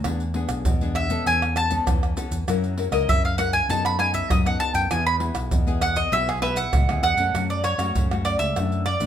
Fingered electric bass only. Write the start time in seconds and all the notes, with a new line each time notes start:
0.05 E2
0.49 B1
0.66 E2
1.26 E2
1.87 E2
2.31 E2
2.47 F#2
2.91 C#2
3.08 F#2
3.69 F#2
4.30 F#2
4.74 F#2
4.91 E2
5.35 B1
5.51 E2
6.12 B1
6.73 C#2
6.89 D2
7.03 E2
7.17 F#2
7.34 F#2
7.78 F#2
7.95 F#2
8.39 C#2
8.56 F#2
9.00 A1